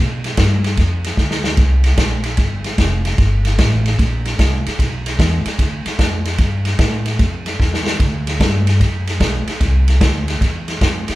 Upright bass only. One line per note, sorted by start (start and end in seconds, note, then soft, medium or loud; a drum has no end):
0.00 0.37 B2 medium
0.38 0.77 G2 medium
0.78 1.17 F2 medium
1.18 1.57 D2 medium
1.58 1.97 C2 medium
1.98 2.37 A#1 medium
2.38 2.77 G1 medium
2.78 3.17 F1 medium
3.18 3.57 G1 medium
3.58 3.97 A1 medium
3.99 4.38 A#1 medium
4.39 4.63 C2 medium
4.66 muted upright bass stroke soft
4.79 5.18 B1 medium
5.19 5.44 E2 medium
5.45 muted upright bass stroke soft
5.59 5.84 D2 medium
5.86 muted upright bass stroke soft
5.99 6.38 F2 medium
6.39 6.78 G2 medium
6.79 7.18 A2 medium
7.19 7.58 F2 medium
7.60 7.99 E2 medium
8.00 8.39 D2 medium
8.40 8.79 G2 medium
8.81 9.20 F#2 medium
9.20 9.45 B1 medium
9.48 muted upright bass stroke soft
9.60 10.00 C2 medium
10.01 10.40 D2 medium
10.41 10.80 E2 medium
10.81 11.06 F2 medium
11.09 muted upright bass stroke soft